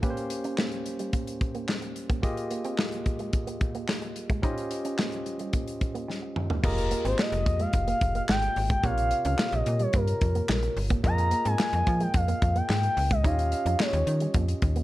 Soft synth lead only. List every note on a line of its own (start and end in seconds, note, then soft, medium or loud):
6.65 7.08 A#4 loud
7.06 7.21 C5 medium
7.20 7.62 D#5 loud
7.61 7.88 F5 loud
7.89 8.14 F5 medium
8.16 8.22 F5 loud
8.30 8.68 G5 loud
8.71 8.86 G5 loud
8.85 9.26 F5 loud
9.26 9.56 F5 medium
9.54 9.83 D#5 medium
9.82 9.97 C#5 medium
9.96 10.77 A#4 medium
11.05 11.48 A#5 loud
11.47 12.03 G#5 loud
12.02 12.17 G5 medium
12.16 12.58 F5 loud
12.57 12.70 G5 loud
12.70 13.13 G5 loud
13.12 13.27 D#5 medium
13.26 13.82 F5 loud
13.80 14.35 C#5 medium